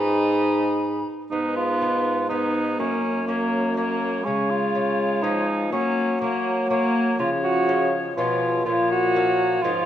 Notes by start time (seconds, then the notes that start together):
Already playing: G#2 B3 D#4 G#4 B5
1.31 G#2 B3 D#4 B4
1.56 F4
1.81 B3 D#4
2.29 B3 D#4 B4
2.79 F#2 A#3 C#4 C#5
3.27 A#3 C#4 C#5
3.76 A#3 C#4 C#5
4.25 C#3 G#3 C#4 C#5
4.50 F4
4.75 G#3 C#4
5.23 F3 G#3 C#4 D#4
5.72 F#3 A#3 C#4 C#5
6.21 A#3 C#4 C#5
6.70 A#3 C#4 C#5
7.19 C#3 F3 F4 C#5
7.44 F#4
7.69 G#3 C#4 F4
8.16 B2 F3 G#3 C#4 F4 C#5
8.65 A#2 F3 F4 C#5
8.91 F#4
9.15 A#3 C#4 F5
9.63 G#2 F3 A#3 C#4 F4 C#5